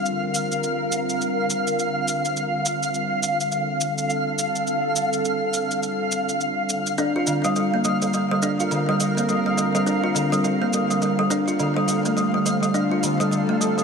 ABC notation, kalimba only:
X:1
M:4/4
L:1/16
Q:"Swing 16ths" 1/4=104
K:Gm
V:1 name="Kalimba" clef=bass
z16 | z16 | z16 | D F D, G, G, B, G, G, G, G, D F D, G, G, B, |
G, G, G, G, D F D, G, G, B, G, G, G, G, D F | D, G, G, A, G, G, G, G, D F D, G, G, A, G, G, |]